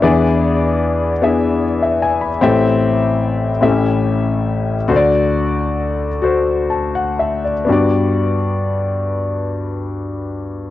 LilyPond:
<<
  \new Staff \with { instrumentName = "Grand piano" } { \time 6/8 \key g \major \tempo 4. = 47 << { r2 r16 e''16 gis''16 b''16~ | b''16 r2 r8. | r2 a''16 fis''16 e''16 d''16~ | d''16 r2 r8. | } \\ { <b d' e' gis' d''>4. <b d' e' gis' e''>4. | <c' e' g' a' e''>4. <c' cis' e' g' a' e''>4. | <fis' a' c'' d''>4. <fis' a' c''>4. | <b d' fis' g' d''>2. | } >> }
  \new Staff \with { instrumentName = "Grand piano" } { \clef bass \time 6/8 \key g \major <e, e>2. | <a,, a,>4. <a,, a,>4. | <d, d>2. | g,2. | }
>>